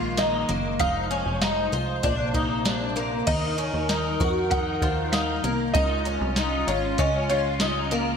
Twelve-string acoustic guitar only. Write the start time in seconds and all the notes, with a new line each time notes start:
Already playing: F4
0.18 D#4
0.49 A#3
0.80 D#4
1.11 C#4
1.41 D#4
1.72 F4
2.03 D4
2.34 D#4
2.65 D4
2.96 A#3
3.27 D#4
3.58 C#4
3.89 D#4
4.20 F#4
4.51 D#4
4.82 F3
5.13 D#4
5.44 A#3
5.74 D#4
6.06 C#4
6.37 D#4
6.68 F4
6.99 C#4
7.30 F4
7.61 D#4
7.91 A#3